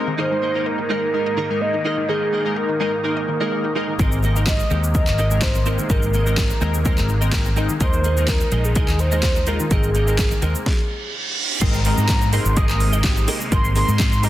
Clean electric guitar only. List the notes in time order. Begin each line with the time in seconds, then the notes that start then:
0.07 muted clean electric guitar stroke
0.18 D#4 G#4 A#4 D#5
0.42 D#4 G#4 A#4 D#5
0.54 D#4 G#4 A#4 D#5
0.66 muted clean electric guitar stroke
0.78 muted clean electric guitar stroke
0.89 D#4 G#4 A#4 D#5
1.02 muted clean electric guitar stroke
1.13 muted clean electric guitar stroke
1.26 muted clean electric guitar stroke
1.37 D#4 G#4 A#4 D#5
1.50 muted clean electric guitar stroke
1.74 muted clean electric guitar stroke
1.85 D#4 G#4 A#4 D#5
1.97 muted clean electric guitar stroke
2.09 D#4 G#4 A#4 D#5
2.32 D#4 G#4 A#4 D#5
2.45 D#4 G#4 A#4 D#5
2.56 muted clean electric guitar stroke
2.69 muted clean electric guitar stroke
2.80 D#4 G#4 A#4 D#5
2.93 muted clean electric guitar stroke
3.04 D#4 G#4 A#4 D#5
3.17 muted clean electric guitar stroke
3.28 muted clean electric guitar stroke
3.40 D#4 G#4 A#4 D#5
3.64 muted clean electric guitar stroke
3.75 D#4 G#4 A#4 D#5
3.88 muted clean electric guitar stroke
3.99 C4 D#4 A#4 D#5
4.23 C4 D#4 A#4 D#5
4.35 C4 D#4 A#4 D#5
4.47 muted clean electric guitar stroke
4.59 muted clean electric guitar stroke
4.70 C4 D#4 A#4 D#5
4.83 muted clean electric guitar stroke
5.07 muted clean electric guitar stroke
5.18 C4 D#4 A#4 D#5
5.31 muted clean electric guitar stroke
5.55 muted clean electric guitar stroke
5.66 C4 D#4 A#4 D#5
5.79 muted clean electric guitar stroke
5.90 C4 D#4 A#4 D#5
6.13 C4 D#4 A#4 D#5
6.26 C4 D#4 A#4 D#5
6.50 muted clean electric guitar stroke
6.61 C4 D#4 A#4 D#5
6.74 muted clean electric guitar stroke
6.85 C4 D#4 A#4 D#5
6.97 muted clean electric guitar stroke
7.09 muted clean electric guitar stroke
7.21 C4 D#4 A#4 D#5
7.45 muted clean electric guitar stroke
7.56 C4 D#4 A#4 D#5
7.69 muted clean electric guitar stroke
7.80 D#4 G#4 A#4 D#5
8.04 D#4 G#4 A#4 D#5
8.17 D#4 G#4 A#4 D#5
8.28 muted clean electric guitar stroke
8.41 muted clean electric guitar stroke
8.52 D#4 G#4 A#4 D#5
8.75 D#4 G#4 A#4 D#5
8.88 muted clean electric guitar stroke
8.99 muted clean electric guitar stroke
9.12 D#4 G#4 A#4 D#5
9.36 muted clean electric guitar stroke
9.47 D#4 G#4 A#4 D#5
9.60 muted clean electric guitar stroke
9.71 C4 D#4 A#4 D#5
9.94 C4 D#4 A#4 D#5
10.07 C4 D#4 A#4 D#5
10.31 muted clean electric guitar stroke
10.42 C4 D#4 A#4 D#5
10.55 muted clean electric guitar stroke
11.61 C4 G#4 A#4 D#5
11.85 C4 G#4 A#4 D#5
11.98 C4 G#4 A#4 D#5
12.09 muted clean electric guitar stroke
12.22 muted clean electric guitar stroke
12.32 C4 G#4 A#4 D#5
12.45 muted clean electric guitar stroke
12.56 C4 G#4 A#4 D#5
12.69 muted clean electric guitar stroke
12.80 muted clean electric guitar stroke
12.93 C4 G#4 A#4 D#5
13.17 muted clean electric guitar stroke
13.27 C4 G#4 A#4 D#5
13.40 muted clean electric guitar stroke
13.51 C4 G#4 A#4 D#5
13.75 C4 G#4 A#4 D#5
13.88 C4 G#4 A#4 D#5
13.99 muted clean electric guitar stroke
14.12 muted clean electric guitar stroke
14.23 C4 G#4 A#4 D#5